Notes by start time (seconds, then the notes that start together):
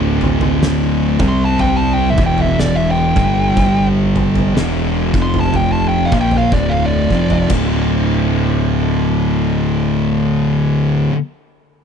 Already playing: D1 D2 A2 D3
0.21 floor tom
0.41 floor tom
0.63 snare
1.19 C2 C3 G3 C4, kick, mid tom
1.28 C6
1.45 A5
1.59 G5, floor tom
1.77 A5
1.93 G5
2.10 E5
2.18 E1 E2 B2 E3, kick, floor tom
2.26 G5
2.38 E5, floor tom
2.59 D5, snare
2.76 E5
2.91 G5
3.16 G1 G2 D3 G3, kick, floor tom
3.57 kick, floor tom
4.16 floor tom
4.35 floor tom
4.55 E1 E2 B2 E3, snare
5.14 F1 F2 C3 F3, kick
5.22 C6
5.34 floor tom
5.40 A5
5.54 G5, floor tom
5.72 A5
5.88 G5
6.05 F5
6.12 A#1 A#2 F3 A#3, kick, floor tom
6.21 G5
6.31 floor tom, mid tom
6.38 F5
6.52 D1 D2 A2 D3 D5, kick
6.69 F5
6.86 D5
7.10 F1 F2 C3 F3, kick
7.30 floor tom
7.49 D1 D2 A2 D3, kick, crash